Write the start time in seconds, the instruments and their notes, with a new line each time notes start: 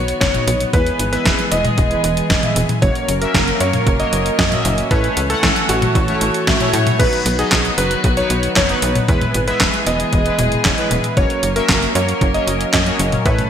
Already playing: analog synth bass B1, string section D#3 F#3 B3 F#4, analog polysynth F#3 B3 D#4 B4, electric grand piano C#5
0.08 closed hi-hat
0.21 analog synth bass F#1, electric grand piano C#5, kick, snare, closed hi-hat
0.34 analog polysynth F#3 B3 D#4 D#5, closed hi-hat, high tom
0.47 analog synth bass B1, closed hi-hat
0.60 closed hi-hat
0.73 analog synth bass E2, string section E3 G#3 G#4, analog polysynth G#3 B3 E4 B4, electric grand piano B4, kick, closed hi-hat
0.86 closed hi-hat
0.99 analog synth bass G#1, closed hi-hat
1.13 analog polysynth G#3 B3 E4 E5, electric grand piano B4, closed hi-hat
1.26 analog synth bass E1, kick, snare, closed hi-hat
1.39 closed hi-hat
1.52 analog synth bass E1, analog polysynth G#3 B3 E4 B4, electric grand piano D#5, closed hi-hat
1.65 closed hi-hat, high tom
1.78 analog synth bass E1, kick, closed hi-hat
1.91 analog polysynth G#3 B3 E4 B4, closed hi-hat
2.04 analog synth bass E1, closed hi-hat
2.17 closed hi-hat
2.30 analog synth bass E1, kick, snare, closed hi-hat
2.43 analog polysynth G#3 B3 E4 E5, closed hi-hat, high tom
2.56 analog synth bass E1, closed hi-hat
2.69 closed hi-hat, high tom
2.82 analog synth bass F#1, string section F#3 A#3 C#4 A#4, analog polysynth A#3 C#4 F#4 C#5, electric grand piano C#5, kick, closed hi-hat
2.95 closed hi-hat
3.08 analog synth bass F#1, closed hi-hat
3.21 analog polysynth A#3 C#4 F#4 E5, electric grand piano A#4, closed hi-hat
3.34 analog synth bass F#1, kick, snare, closed hi-hat
3.48 closed hi-hat
3.60 analog synth bass F#2, analog polysynth A#3 C#4 F#4 C#5, electric grand piano C#5, closed hi-hat
3.73 closed hi-hat, high tom
3.87 analog synth bass F#1, kick, closed hi-hat
4.00 analog polysynth A#3 C#4 F#4 C#5, electric grand piano D#5, closed hi-hat
4.13 analog synth bass F#1, closed hi-hat
4.26 closed hi-hat
4.39 analog synth bass F#2, electric grand piano D#5, kick, snare, closed hi-hat
4.52 analog polysynth A#3 C#4 F#4 E5, closed hi-hat, high tom
4.65 analog synth bass F#1, closed hi-hat
4.78 closed hi-hat
4.91 analog synth bass A2, string section E3 A3 A4, analog polysynth A3 C#4 E4 C#5, electric grand piano B4, kick, closed hi-hat
5.04 closed hi-hat
5.17 analog synth bass C#2, closed hi-hat
5.30 analog polysynth A3 C#4 E4 F#5, electric grand piano A4, closed hi-hat
5.43 analog synth bass A1, kick, snare, closed hi-hat
5.56 closed hi-hat
5.69 analog synth bass A1, analog polysynth A3 C#4 E4 C#5, electric grand piano F#4, closed hi-hat
5.82 closed hi-hat, high tom
5.95 analog synth bass A1, kick, closed hi-hat
6.08 analog polysynth A3 C#4 E4 C#5, closed hi-hat
6.21 analog synth bass A1, closed hi-hat
6.34 closed hi-hat
6.47 analog synth bass A1, analog polysynth A3 C#4 E4 E5, kick, snare, closed hi-hat
6.60 analog polysynth A3 C#4 E4 C#5, closed hi-hat, high tom
6.73 analog synth bass A2, closed hi-hat
6.87 closed hi-hat, high tom
6.99 analog synth bass B1, string section D#3 F#3 B3 F#4, analog polysynth F#3 B3 D#4 B4, electric grand piano B4, kick, closed hi-hat, crash
7.13 closed hi-hat
7.26 analog synth bass B1, closed hi-hat
7.38 analog polysynth F#3 B3 D#4 D#5, electric grand piano G#4, closed hi-hat
7.52 analog synth bass B1, kick, snare, clap, closed hi-hat
7.65 closed hi-hat
7.78 analog synth bass F#1, analog polysynth F#3 B3 D#4 B4, electric grand piano B4, closed hi-hat
7.91 closed hi-hat
8.04 analog synth bass B1, kick, closed hi-hat
8.17 analog polysynth F#3 B3 D#4 B4, electric grand piano C#5, closed hi-hat
8.30 analog synth bass B1, closed hi-hat
8.43 closed hi-hat
8.56 analog synth bass F#1, analog polysynth F#3 B3 D#4 C#5, electric grand piano C#5, kick, snare, clap, closed hi-hat
8.69 analog polysynth F#3 B3 D#4 B4, closed hi-hat
8.82 analog synth bass B1, closed hi-hat
8.95 closed hi-hat, high tom
9.08 analog synth bass E2, string section E3 G#3 G#4, analog polysynth G#3 B3 E4 B4, electric grand piano B4, kick, closed hi-hat
9.21 closed hi-hat, high tom
9.34 analog synth bass G#1, closed hi-hat
9.47 analog polysynth G#3 B3 E4 E5, electric grand piano B4, closed hi-hat
9.61 analog synth bass E1, kick, snare, clap, closed hi-hat
9.74 closed hi-hat
9.87 analog synth bass E1, analog polysynth G#3 B3 E4 B4, electric grand piano D#5, closed hi-hat
10.00 closed hi-hat
10.13 analog synth bass E1, kick, closed hi-hat
10.26 analog polysynth G#3 B3 E4 B4, closed hi-hat
10.39 analog synth bass E1, closed hi-hat, high tom
10.52 closed hi-hat
10.65 analog synth bass E1, analog polysynth G#3 B3 E4 C#5, kick, snare, clap, closed hi-hat
10.78 analog polysynth G#3 B3 E4 B4, closed hi-hat
10.91 analog synth bass E1, closed hi-hat, high tom
11.04 closed hi-hat
11.17 analog synth bass F#1, string section F#3 A#3 C#4 A#4, analog polysynth A#3 C#4 F#4 C#5, electric grand piano C#5, kick, closed hi-hat
11.30 closed hi-hat
11.43 analog synth bass F#1, closed hi-hat
11.56 analog polysynth A#3 C#4 F#4 E5, electric grand piano A#4, closed hi-hat
11.69 analog synth bass F#1, kick, snare, clap, closed hi-hat
11.82 closed hi-hat
11.95 analog synth bass F#2, analog polysynth A#3 C#4 F#4 C#5, electric grand piano C#5, closed hi-hat
12.09 closed hi-hat
12.21 analog synth bass F#1, kick, closed hi-hat
12.34 analog polysynth A#3 C#4 F#4 C#5, electric grand piano D#5, closed hi-hat
12.47 analog synth bass F#1, closed hi-hat
12.61 closed hi-hat
12.73 analog synth bass F#2, analog polysynth A#3 C#4 F#4 D#5, electric grand piano D#5, kick, snare, clap, closed hi-hat
12.86 analog polysynth A#3 C#4 F#4 C#5, closed hi-hat
12.99 analog synth bass F#1, closed hi-hat
13.12 closed hi-hat, high tom
13.26 analog synth bass A2, string section E3 A3 A4, analog polysynth A3 C#4 E4 C#5, electric grand piano B4, kick, closed hi-hat
13.38 closed hi-hat, high tom